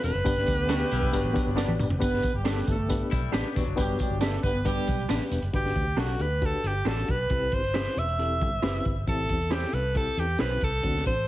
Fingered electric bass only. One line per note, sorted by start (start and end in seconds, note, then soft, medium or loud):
0.03 0.12 E1 loud
0.15 0.23 F#1 medium
0.26 0.43 G1 loud
0.48 0.82 D2 medium
0.92 1.09 B1 medium
1.13 1.22 G1 medium
1.25 1.33 A1 medium
1.46 1.63 G1 medium
1.68 1.77 A1 medium
1.79 1.97 F#1 medium
2.02 2.19 G1 medium
2.34 2.60 G1 medium
2.68 3.02 G1 medium
3.12 3.29 B1 medium
3.33 3.42 A1 medium
3.56 3.65 E1 medium
3.67 3.75 F#1 medium
3.78 3.95 G1 medium
4.11 4.36 G1 medium
4.43 4.78 G1 medium
4.87 5.05 B1 medium
5.09 5.18 A1 medium
5.31 5.40 E1 medium
5.42 5.51 F#1 medium
5.53 5.71 G1 medium
5.76 5.93 D2 medium
5.97 6.14 B1 medium
6.19 6.54 D2 medium
6.64 6.81 G1 medium
6.85 7.03 A1 medium
7.08 7.25 B1 medium
7.30 7.47 C2 medium
7.52 7.87 G1 medium
7.96 8.41 E1 medium
8.41 8.58 G1 medium
8.62 8.80 F#1 medium
8.86 9.03 G1 medium
9.08 9.25 A1 medium
9.29 9.64 E2 medium
9.73 10.07 C2 medium
10.17 10.35 E2 medium
10.40 10.57 B1 medium
10.62 10.79 C2 medium
10.83 11.01 D2 medium
11.06 11.28 A1 medium